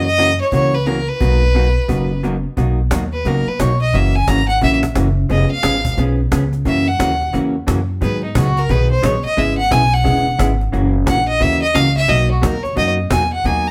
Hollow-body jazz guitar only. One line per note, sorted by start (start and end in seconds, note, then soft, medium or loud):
0.18 0.30 C#3 medium
0.18 0.30 E3 medium
0.18 0.30 A#3 medium
0.18 0.30 C#4 medium
0.18 0.30 F#4 medium
0.53 0.74 C#3 medium
0.53 0.74 E3 medium
0.53 0.74 A#3 medium
0.53 0.74 C#4 medium
0.53 0.74 F#4 medium
0.86 0.98 C#3 medium
0.86 0.98 E3 medium
0.86 0.98 A#3 medium
0.86 0.99 C#4 medium
0.86 0.99 F#4 medium
1.20 1.42 B2 medium
1.20 1.42 F#3 medium
1.20 1.42 A#3 medium
1.20 1.43 D#4 medium
1.20 1.43 F#4 medium
1.55 1.66 B2 medium
1.55 1.66 F#3 medium
1.55 1.67 A#3 medium
1.55 1.67 D#4 medium
1.55 1.67 F#4 medium
1.88 2.10 B2 medium
1.88 2.10 F#3 medium
1.88 2.10 A#3 medium
1.88 2.11 D#4 medium
1.88 2.11 F#4 medium
2.23 2.35 B2 medium
2.23 2.35 F#3 medium
2.23 2.35 A#3 medium
2.23 2.35 D#4 medium
2.23 2.35 F#4 medium
2.57 2.78 B2 medium
2.57 2.79 F#3 medium
2.57 2.79 A#3 medium
2.57 2.79 D#4 medium
2.57 2.79 F#4 medium
2.92 3.03 B2 medium
2.92 3.03 F#3 medium
2.92 3.03 A#3 medium
2.92 3.03 D#4 medium
2.92 3.03 F#4 medium
3.26 3.47 B2 medium
3.26 3.47 F#3 medium
3.26 3.47 A#3 medium
3.26 3.48 D#4 medium
3.26 3.48 F#4 medium
3.60 3.71 B2 medium
3.60 3.71 F#3 medium
3.60 3.71 A#3 medium
3.60 3.71 D#4 medium
3.60 3.72 F#4 medium
3.94 4.15 C#3 medium
3.94 4.15 E3 medium
3.94 4.15 A#3 medium
3.94 4.16 C#4 medium
3.94 4.15 F#4 medium
4.28 4.39 C#3 medium
4.28 4.39 E3 medium
4.28 4.40 A#3 medium
4.28 4.40 C#4 medium
4.28 4.40 F#4 medium
4.61 4.83 C#3 medium
4.61 4.83 E3 medium
4.61 4.83 A#3 medium
4.61 4.83 C#4 medium
4.61 4.83 F#4 medium
4.95 5.07 C#3 medium
4.95 5.07 E3 medium
4.95 5.07 A#3 medium
4.95 5.07 C#4 medium
4.95 5.07 F#4 medium
5.29 5.51 F3 medium
5.29 5.51 B3 medium
5.29 5.51 C#4 medium
5.29 5.51 G#4 medium
5.63 5.74 F3 medium
5.63 5.75 B3 medium
5.63 5.75 C#4 medium
5.63 5.75 G#4 medium
5.98 6.19 F3 medium
5.98 6.19 B3 medium
5.98 6.20 C#4 medium
5.98 6.20 G#4 medium
6.32 6.43 F3 medium
6.32 6.43 B3 medium
6.32 6.44 C#4 medium
6.32 6.44 G#4 medium
6.65 6.87 C#3 medium
6.65 6.87 E3 medium
6.65 6.87 A#3 medium
6.65 6.87 C#4 medium
6.65 6.87 F#4 medium
6.99 7.11 C#3 medium
6.99 7.11 E3 medium
6.99 7.11 A#3 medium
6.99 7.11 C#4 medium
6.99 7.11 F#4 medium
7.33 7.55 C#3 medium
7.33 7.55 E3 medium
7.33 7.55 A#3 medium
7.33 7.55 C#4 medium
7.33 7.55 F#4 medium
7.67 7.78 C#3 medium
7.67 7.79 E3 medium
7.67 7.79 A#3 medium
7.67 7.79 C#4 medium
7.67 7.79 F#4 medium
8.01 8.22 D#3 medium
8.01 8.23 F#3 medium
8.01 8.23 B3 soft
8.01 8.23 D#4 medium
8.01 8.23 G#4 medium
8.36 8.47 D#3 medium
8.36 8.47 F#3 medium
8.36 8.47 B3 medium
8.36 8.47 D#4 medium
8.36 8.47 G#4 medium
8.70 8.91 D#3 medium
8.70 8.91 F#3 medium
8.70 8.91 B3 medium
8.70 8.91 D#4 medium
8.70 8.91 G#4 medium
9.02 9.14 D#3 medium
9.02 9.14 F#3 medium
9.02 9.14 B3 medium
9.02 9.15 D#4 medium
9.02 9.15 G#4 medium
9.37 9.58 C#3 medium
9.37 9.58 G#3 medium
9.37 9.59 B3 medium
9.37 9.59 E4 medium
9.37 9.59 G#4 medium
9.71 9.82 C#3 medium
9.71 9.82 G#3 medium
9.71 9.82 B3 medium
9.71 9.82 E4 medium
9.71 9.83 G#4 medium
10.04 10.26 C#3 medium
10.04 10.26 G#3 medium
10.04 10.26 B3 medium
10.04 10.26 E4 medium
10.04 10.26 G#4 medium
10.39 10.50 C#3 medium
10.39 10.50 G#3 medium
10.39 10.50 B3 medium
10.39 10.51 E4 medium
10.39 10.51 G#4 medium
10.72 10.94 C#3 medium
10.72 10.94 E3 medium
10.72 10.94 A#3 medium
10.72 10.94 C#4 medium
10.72 10.95 F#4 medium
11.06 11.18 C#3 medium
11.06 11.18 E3 medium
11.06 11.18 A#3 medium
11.06 11.18 C#4 medium
11.06 11.18 F#4 medium
11.40 11.62 C#3 medium
11.40 11.62 E3 medium
11.40 11.62 A#3 medium
11.40 11.62 C#4 medium
11.40 11.62 F#4 medium
11.74 11.86 C#3 medium
11.74 11.86 E3 medium
11.74 11.86 A#3 medium
11.74 11.86 C#4 medium
11.74 11.87 F#4 medium
12.08 12.29 B2 medium
12.08 12.30 F#3 medium
12.08 12.30 A#3 medium
12.08 12.30 D#4 medium
12.08 12.30 F#4 medium
12.42 12.53 B2 medium
12.42 12.54 F#3 medium
12.42 12.54 A#3 medium
12.42 12.54 D#4 medium
12.42 12.54 F#4 medium
12.76 12.97 B2 medium
12.76 12.98 F#3 medium
12.76 12.98 A#3 medium
12.76 12.98 D#4 medium
12.76 12.98 F#4 medium
13.11 13.22 B2 medium
13.11 13.22 F#3 medium
13.11 13.23 A#3 medium
13.11 13.23 D#4 medium
13.11 13.23 F#4 medium
13.45 13.66 B2 medium
13.45 13.66 F#3 medium
13.45 13.66 A#3 medium
13.45 13.67 D#4 medium
13.45 13.67 F#4 medium